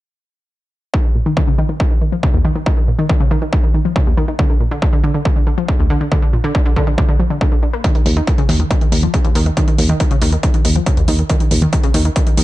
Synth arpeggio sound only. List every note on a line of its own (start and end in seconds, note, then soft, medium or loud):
0.94 1.01 D#3 loud
1.05 1.12 D#3 medium
1.15 1.18 A#2 medium
1.26 1.33 D#3 loud
1.37 1.40 D#3 loud
1.48 1.53 C#3 medium
1.58 1.66 D#3 loud
1.69 1.72 D#3 medium
1.80 1.83 D#3 medium
1.91 1.98 D#3 medium
2.02 2.07 D#3 medium
2.12 2.17 F3 medium
2.23 2.28 C#3 medium
2.34 2.39 D#2 loud
2.45 2.52 D#3 loud
2.56 2.58 D#3 medium
2.66 2.74 D#3 loud
2.77 2.85 D#3 medium
2.88 2.91 A#2 medium
2.99 3.06 D#3 loud
3.09 3.12 D#3 loud
3.20 3.25 C#3 medium
3.31 3.38 D#3 loud
3.42 3.45 D#3 medium
3.53 3.56 D#3 medium
3.63 3.71 D#3 medium
3.74 3.79 D#3 medium
3.85 3.90 F3 medium
3.96 4.01 C#3 medium
4.07 4.12 D#2 loud
4.17 4.25 D#3 loud
4.28 4.31 D#3 medium
4.39 4.46 D3 loud
4.50 4.57 D3 medium
4.61 4.64 A#2 medium
4.71 4.79 D3 loud
4.82 4.85 D3 loud
4.93 4.98 D3 medium
5.04 5.11 D3 loud
5.14 5.17 D3 medium
5.25 5.28 D3 medium
5.36 5.44 D3 medium
5.47 5.52 D3 medium
5.58 5.63 F3 medium
5.68 5.73 D3 medium
5.79 5.84 D2 loud
5.90 5.97 D3 loud
6.01 6.04 D3 medium
6.12 6.19 D3 loud
6.22 6.30 D3 medium
6.33 6.36 A#2 medium
6.44 6.51 D3 loud
6.55 6.58 D3 loud
6.66 6.71 D3 loud
6.76 6.84 D3 loud
6.87 6.90 D3 medium
6.98 7.01 D3 medium
7.09 7.16 D3 medium
7.20 7.25 F3 medium
7.30 7.35 D3 medium
7.41 7.49 D3 medium
7.52 7.55 D3 medium
7.63 7.66 D3 medium
7.73 7.78 A#3 medium
7.84 7.92 D#3 loud
7.95 8.03 D#3 medium
8.06 8.09 A#2 medium
8.17 8.24 D#3 loud
8.27 8.30 D#3 loud
8.38 8.43 C#3 loud
8.49 8.56 D#3 loud
8.60 8.63 D#3 medium
8.71 8.74 D#3 medium
8.81 8.89 D#3 medium
8.92 8.97 D#3 medium
9.03 9.08 F3 medium
9.14 9.19 C#3 medium
9.25 9.30 D#2 loud
9.35 9.43 D#3 loud
9.46 9.49 D#3 medium
9.57 9.64 D#3 loud
9.68 9.75 D#3 medium
9.79 9.82 A#2 medium
9.89 9.97 D#3 loud
10.00 10.03 D#3 loud
10.11 10.16 C#3 loud
10.22 10.29 D#3 loud
10.33 10.36 D#3 medium
10.43 10.46 D#3 medium
10.54 10.62 D#3 medium
10.65 10.70 D#3 medium
10.76 10.81 F3 medium
10.86 10.91 C#3 medium
10.97 11.02 D#2 loud
11.08 11.15 D#3 loud
11.19 11.22 D#3 medium
11.30 11.37 D#3 loud
11.40 11.48 D#3 medium
11.51 11.54 A#2 medium
11.62 11.69 D#3 loud
11.73 11.76 D#3 loud
11.84 11.89 C#3 loud
11.94 12.02 D#3 loud
12.05 12.08 D#3 medium
12.16 12.19 D#3 medium
12.27 12.34 D#3 medium
12.38 12.43 D#3 medium